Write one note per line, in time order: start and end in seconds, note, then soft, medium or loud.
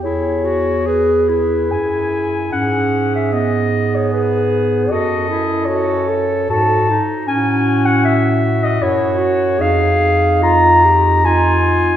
0.03 1.73 E2 soft
0.03 0.46 E4 soft
0.03 0.82 G#4 soft
0.03 0.89 C#5 medium
0.45 0.88 F#4 soft
0.86 1.70 G#4 soft
0.86 1.31 G#4 soft
0.86 1.73 B4 soft
1.29 2.55 E4 soft
1.71 2.52 F#2 soft
1.71 2.37 G#4 soft
1.71 2.52 G#5 medium
2.52 4.86 G#2 soft
2.52 3.34 C#4 soft
2.52 4.10 G#4 soft
2.52 3.12 F#5 medium
3.15 3.35 E5 soft
3.32 4.92 B3 soft
3.32 3.96 D#5 medium
3.95 4.13 C#5 soft
4.13 4.93 G#4 soft
4.13 4.92 B4 medium
4.90 6.46 F#2 soft
4.90 5.28 F#4 soft
4.90 5.68 A4 soft
4.90 5.67 D#5 medium
5.29 5.69 E4 soft
5.65 6.10 F#4 soft
5.65 6.49 A4 soft
5.65 6.49 C#5 medium
6.09 6.52 A4 soft
6.49 7.00 G#2 soft
6.49 6.92 F#4 soft
6.49 7.00 A4 soft
6.49 7.00 A5 medium
6.90 7.29 D#4 soft
7.27 8.78 A2 soft
7.27 8.55 C#4 soft
7.27 8.78 F#4 soft
7.27 7.87 G#5 medium
7.85 8.04 F#5 medium
8.04 8.65 E5 medium
8.64 8.84 D#5 medium
8.80 9.60 F#2 soft
8.80 9.20 E4 medium
8.80 9.62 F#4 medium
8.80 9.63 C#5 medium
9.18 9.60 F#4 soft
9.59 11.97 F2 soft
9.59 11.25 D#4 medium
9.59 10.44 G#4 medium
9.59 10.43 F5 medium
10.42 10.86 F4 medium
10.42 11.27 A#5 medium
10.85 11.26 G4 medium
11.25 11.97 D#4 medium
11.25 11.97 F4 medium
11.25 11.97 G#5 medium